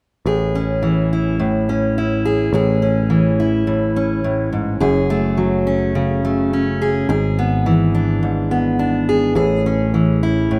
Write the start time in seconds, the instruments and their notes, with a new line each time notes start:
0.26 picked electric bass A1, steel-string acoustic guitar A2 G#4
0.55 steel-string acoustic guitar C#4
0.83 steel-string acoustic guitar E3
1.13 steel-string acoustic guitar E4
1.40 steel-string acoustic guitar A2
1.69 steel-string acoustic guitar C#4
1.98 steel-string acoustic guitar E4
2.25 steel-string acoustic guitar G#4
2.53 picked electric bass A1, steel-string acoustic guitar A2 G#4
2.82 steel-string acoustic guitar C#4
3.10 steel-string acoustic guitar E3
3.40 steel-string acoustic guitar E4
3.67 steel-string acoustic guitar A2
3.96 steel-string acoustic guitar C#4
4.24 steel-string acoustic guitar A2
4.53 steel-string acoustic guitar G#2
4.80 picked electric bass F#1, steel-string acoustic guitar F#2 G#4
5.10 steel-string acoustic guitar A3
5.37 steel-string acoustic guitar F#3
5.67 steel-string acoustic guitar C#4
5.95 steel-string acoustic guitar C#3
6.25 steel-string acoustic guitar A3
6.53 steel-string acoustic guitar C#4
6.82 steel-string acoustic guitar G#4
7.09 picked electric bass G#1, steel-string acoustic guitar G#2 G#4
7.39 steel-string acoustic guitar B3
7.66 steel-string acoustic guitar E3
7.95 steel-string acoustic guitar D4
8.23 steel-string acoustic guitar G#2
8.51 steel-string acoustic guitar B3
8.79 steel-string acoustic guitar D4
9.09 steel-string acoustic guitar G#4
9.35 picked electric bass A1, steel-string acoustic guitar A2 G#4
9.66 steel-string acoustic guitar C#4
9.94 steel-string acoustic guitar E3
10.23 steel-string acoustic guitar E4
10.51 steel-string acoustic guitar A2